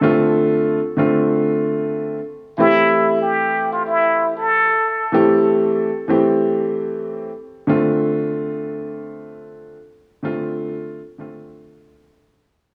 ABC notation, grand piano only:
X:1
M:4/4
L:1/8
Q:"Swing 16ths" 1/4=94
K:Dm
V:1 name="Grand piano"
[D,A,CF]2 z [D,A,CF]4 z | [E,A,CG]6 z2 | [E,A,CG]2 z [E,A,CG]4 z | [D,A,CF]6 z2 |
[D,A,CF]2 z [D,A,CF]4 z |]